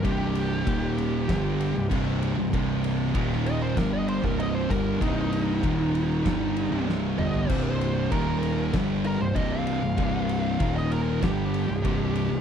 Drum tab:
CC |----------------|----------------|----------------|x---------------|
RD |x-x-x-x-x-x-x-x-|x-x-x-x-x-x-x-x-|x-x-x-x-x-x-----|--x-x-x-x-x-x-x-|
SD |--------o-------|-----o--o-------|--------o---o---|--------o-------|
T2 |----------------|----------------|--------------o-|----------------|
FT |----------------|----------------|---------------o|----------------|
BD |o---o---o---o---|o---o---o--o--o-|o---o---o-------|o---o---o---o---|

CC |----------------|
RD |x-x-x-x-x-x-x-x-|
SD |-----o--o-------|
T2 |----------------|
FT |----------------|
BD |o---o---o---o---|